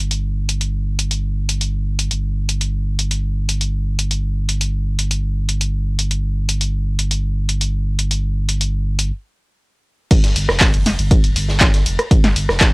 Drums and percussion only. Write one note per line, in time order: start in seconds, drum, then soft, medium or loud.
0.11 closed hi-hat soft
0.49 closed hi-hat medium
0.61 closed hi-hat soft
0.99 closed hi-hat medium
1.11 closed hi-hat soft
1.49 closed hi-hat medium
1.61 closed hi-hat soft
1.99 closed hi-hat medium
2.11 closed hi-hat soft
2.49 closed hi-hat medium
2.61 closed hi-hat soft
2.99 closed hi-hat medium
3.11 closed hi-hat soft
3.49 closed hi-hat medium
3.61 closed hi-hat soft
3.99 closed hi-hat medium
4.11 closed hi-hat soft
4.49 closed hi-hat medium
4.61 closed hi-hat soft
4.99 closed hi-hat medium
5.11 closed hi-hat soft
5.49 closed hi-hat medium
5.61 closed hi-hat soft
5.99 closed hi-hat medium
6.11 closed hi-hat soft
6.49 closed hi-hat medium
6.61 closed hi-hat soft
6.99 closed hi-hat medium
7.11 closed hi-hat soft
7.49 closed hi-hat medium
7.61 closed hi-hat medium
7.99 closed hi-hat medium
8.11 closed hi-hat soft
8.49 closed hi-hat medium
8.61 closed hi-hat medium
8.99 closed hi-hat medium
10.11 kick loud
10.11 closed hi-hat medium
10.11 crash loud
10.11 ride medium
10.24 snare medium
10.24 closed hi-hat medium
10.36 open hi-hat loud
10.36 ride medium
10.48 cross-stick medium
10.48 snare soft
10.60 kick loud
10.60 snare loud
10.60 clap loud
10.60 closed hi-hat medium
10.60 open hi-hat medium
10.74 closed hi-hat medium
10.86 snare soft
10.86 open hi-hat loud
10.86 ride medium
10.99 closed hi-hat soft
11.11 kick loud
11.11 closed hi-hat medium
11.11 ride medium
11.24 closed hi-hat medium
11.36 open hi-hat loud
11.36 ride medium
11.49 snare soft
11.61 kick loud
11.61 snare loud
11.61 clap loud
11.61 closed hi-hat medium
11.61 ride medium
11.74 snare medium
11.74 closed hi-hat medium
11.86 open hi-hat loud
11.86 ride medium
11.99 cross-stick medium
11.99 closed hi-hat soft
12.11 kick loud
12.11 closed hi-hat medium
12.11 ride medium
12.24 snare medium
12.24 snare soft
12.24 closed hi-hat medium
12.36 open hi-hat loud
12.36 ride medium
12.49 cross-stick medium
12.49 snare soft
12.61 kick loud
12.61 snare loud
12.61 clap loud
12.61 closed hi-hat medium
12.61 ride medium